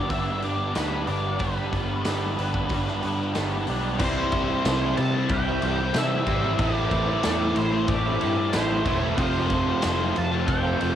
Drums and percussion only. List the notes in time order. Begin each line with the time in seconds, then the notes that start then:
0.10 kick, open hi-hat
0.42 open hi-hat
0.75 snare, open hi-hat, tambourine
1.07 open hi-hat
1.39 kick, open hi-hat
1.73 kick, open hi-hat
2.05 snare, open hi-hat, tambourine
2.39 open hi-hat
2.54 kick
2.69 kick, open hi-hat
2.87 snare
3.03 open hi-hat
3.35 snare, open hi-hat, tambourine
3.67 open hi-hat
3.99 kick, crash
4.32 kick, ride
4.65 snare, ride, tambourine
4.97 ride
5.29 kick, ride
5.62 ride
5.94 snare, ride, tambourine
6.27 kick, ride
6.59 kick, ride
6.91 kick, ride
7.23 snare, ride, tambourine
7.56 ride
7.88 kick, ride
8.21 ride
8.53 snare, ride, tambourine
8.86 kick, ride
9.18 kick, ride
9.50 kick, ride
9.82 snare, ride, tambourine
10.16 ride
10.48 kick, ride
10.80 ride